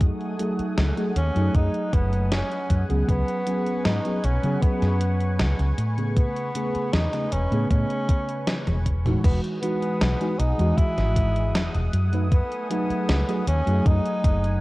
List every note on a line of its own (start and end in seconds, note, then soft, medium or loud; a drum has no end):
0.00 0.35 F#3 medium
0.00 0.35 A3 medium
0.00 3.05 A3 medium
0.00 0.35 D#4 medium
0.00 0.35 G#4 medium
0.00 5.74 F#5 medium
0.00 9.20 G#5 medium
0.00 3.05 D#6 medium
0.00 kick loud
0.00 closed hi-hat medium
0.21 closed hi-hat soft
0.39 0.93 F#3 medium
0.39 0.93 A3 medium
0.39 0.93 D#4 medium
0.39 0.93 G#4 medium
0.39 closed hi-hat medium
0.59 muted fretless electric bass stroke soft
0.59 closed hi-hat soft
0.78 0.91 C#2 loud
0.78 snare loud
0.78 closed hi-hat medium
0.96 1.11 F#3 medium
0.96 1.11 A3 medium
0.96 1.11 D#4 medium
0.96 1.11 G#4 loud
0.96 closed hi-hat soft
1.16 1.29 D#2 loud
1.16 1.57 C#4 loud
1.16 closed hi-hat medium
1.34 1.48 F#2 medium
1.34 2.84 F#3 medium
1.34 2.85 A3 medium
1.34 2.85 D#4 medium
1.34 2.86 G#4 loud
1.34 closed hi-hat soft
1.55 1.68 F#2 medium
1.55 1.95 D#4 loud
1.55 kick loud
1.55 closed hi-hat medium
1.74 closed hi-hat soft
1.93 2.41 F#1 loud
1.93 2.32 B3 loud
1.93 kick loud
1.93 closed hi-hat medium
2.13 closed hi-hat soft
2.32 2.86 C#4 loud
2.32 snare loud
2.32 closed hi-hat medium
2.52 closed hi-hat soft
2.70 2.83 F#2 loud
2.70 kick medium
2.70 closed hi-hat medium
2.89 3.02 C#2 loud
2.89 3.42 F#3 medium
2.89 3.42 B3 medium
2.89 3.43 C#4 medium
2.89 3.43 G#4 medium
2.89 closed hi-hat soft
3.09 3.22 C#2 loud
3.09 3.87 B3 loud
3.09 5.76 B4 medium
3.09 9.20 C#6 medium
3.09 kick loud
3.09 closed hi-hat medium
3.28 closed hi-hat soft
3.46 4.00 F#3 medium
3.46 4.01 B3 medium
3.46 4.01 C#4 medium
3.46 4.01 G#4 medium
3.46 closed hi-hat medium
3.67 closed hi-hat soft
3.85 3.99 G#2 loud
3.85 4.25 D#4 loud
3.85 snare loud
3.85 closed hi-hat medium
4.05 4.19 F#3 medium
4.05 4.19 B3 medium
4.05 4.19 C#4 medium
4.05 4.20 G#4 loud
4.05 closed hi-hat soft
4.24 4.37 B1 loud
4.24 4.64 C#4 medium
4.24 closed hi-hat medium
4.43 4.56 C#3 medium
4.43 5.75 F#3 medium
4.43 5.76 B3 medium
4.43 5.76 C#4 medium
4.43 5.77 G#4 loud
4.43 closed hi-hat soft
4.62 5.78 B3 medium
4.62 muted fretless electric bass stroke soft
4.62 kick loud
4.62 closed hi-hat medium
4.82 5.41 F#2 medium
4.82 snare soft
4.82 closed hi-hat soft
5.01 closed hi-hat medium
5.21 closed hi-hat soft
5.40 5.53 C#2 medium
5.40 snare loud
5.40 closed hi-hat medium
5.59 5.72 C#2 medium
5.59 closed hi-hat soft
5.78 6.25 A2 medium
5.78 9.21 B4 medium
5.78 closed hi-hat medium
5.97 6.50 C#3 medium
5.97 6.50 A3 medium
5.97 6.51 B3 medium
5.97 6.51 G#4 loud
5.97 closed hi-hat soft
6.16 6.95 B3 loud
6.16 kick loud
6.16 closed hi-hat medium
6.36 closed hi-hat soft
6.54 7.08 C#3 medium
6.54 7.09 A3 medium
6.54 7.09 B3 medium
6.54 7.09 G#4 medium
6.54 closed hi-hat loud
6.75 muted fretless electric bass stroke soft
6.75 closed hi-hat soft
6.93 7.06 E2 loud
6.93 7.33 D#4 loud
6.93 snare loud
6.93 closed hi-hat medium
7.13 7.27 C#3 medium
7.13 7.27 A3 medium
7.13 7.27 B3 medium
7.13 7.27 G#4 loud
7.13 snare soft
7.13 closed hi-hat soft
7.32 7.45 E1 loud
7.32 7.70 C#4 loud
7.32 closed hi-hat medium
7.50 7.64 A2 medium
7.50 9.00 C#3 loud
7.50 9.01 A3 medium
7.50 9.01 B3 medium
7.50 9.01 G#4 loud
7.50 closed hi-hat soft
7.70 7.83 A2 medium
7.70 8.82 C#4 loud
7.70 kick loud
7.70 closed hi-hat medium
7.90 closed hi-hat soft
8.09 kick loud
8.09 closed hi-hat medium
8.29 closed hi-hat soft
8.47 snare loud
8.47 closed hi-hat medium
8.47 high tom medium
8.67 9.14 E1 medium
8.67 closed hi-hat soft
8.67 high tom medium
8.86 kick medium
8.86 closed hi-hat medium
9.05 9.58 E3 medium
9.05 9.58 G#3 medium
9.05 9.58 D#4 medium
9.05 9.59 F#4 loud
9.05 closed hi-hat soft
9.05 mid tom medium
9.24 9.37 E1 medium
9.24 9.40 B3 medium
9.24 11.91 G#4 medium
9.24 14.61 F#5 medium
9.24 14.61 D#6 medium
9.24 kick loud
9.24 closed hi-hat medium
9.24 crash loud
9.44 closed hi-hat soft
9.62 10.16 E3 medium
9.62 10.16 G#3 medium
9.62 10.40 B3 loud
9.62 10.16 D#4 medium
9.62 10.17 F#4 loud
9.62 closed hi-hat loud
9.82 closed hi-hat soft
10.01 10.14 B1 loud
10.01 snare loud
10.01 closed hi-hat medium
10.20 10.34 E3 medium
10.20 10.35 G#3 medium
10.20 10.35 D#4 medium
10.20 10.35 F#4 loud
10.20 closed hi-hat soft
10.39 10.52 B1 loud
10.39 10.79 D#4 loud
10.39 closed hi-hat loud
10.57 10.72 E2 medium
10.57 11.90 E3 loud
10.57 11.91 G#3 medium
10.57 11.92 F#4 loud
10.57 11.91 D#5 medium
10.57 closed hi-hat soft
10.77 11.93 E4 loud
10.77 muted fretless electric bass stroke soft
10.77 kick loud
10.77 closed hi-hat medium
10.98 11.55 G#1 medium
10.98 snare soft
10.98 closed hi-hat soft
11.16 kick medium
11.16 closed hi-hat loud
11.36 closed hi-hat soft
11.55 11.68 E1 medium
11.55 snare loud
11.55 closed hi-hat medium
11.75 11.87 E1 medium
11.75 closed hi-hat soft
11.93 12.41 F#2 medium
11.93 14.61 A3 medium
11.93 14.61 G#5 medium
11.93 closed hi-hat medium
12.12 12.26 F#3 medium
12.12 12.27 A3 medium
12.12 12.27 D#4 medium
12.12 12.27 B4 medium
12.12 closed hi-hat soft
12.32 12.68 B3 loud
12.32 kick loud
12.32 closed hi-hat medium
12.52 closed hi-hat soft
12.70 13.24 F#3 medium
12.70 13.24 A3 medium
12.70 13.43 B3 loud
12.70 13.24 D#4 medium
12.70 13.24 G#4 loud
12.70 closed hi-hat medium
12.90 muted fretless electric bass stroke soft
12.90 closed hi-hat soft
13.09 13.22 C#2 loud
13.09 snare loud
13.09 closed hi-hat medium
13.28 13.42 F#3 loud
13.28 13.42 A3 medium
13.28 13.42 D#4 medium
13.28 13.43 G#4 loud
13.28 closed hi-hat soft
13.47 13.60 D#2 loud
13.47 13.87 C#4 loud
13.47 closed hi-hat loud
13.66 13.79 F#2 medium
13.66 14.61 F#3 loud
13.66 14.61 A3 medium
13.66 14.61 D#4 medium
13.66 14.61 G#4 loud
13.66 closed hi-hat soft
13.86 13.99 F#2 medium
13.86 14.61 D#4 loud
13.86 kick loud
13.86 closed hi-hat medium
14.05 closed hi-hat soft
14.24 14.61 F#1 loud
14.24 kick loud
14.24 closed hi-hat loud
14.44 closed hi-hat soft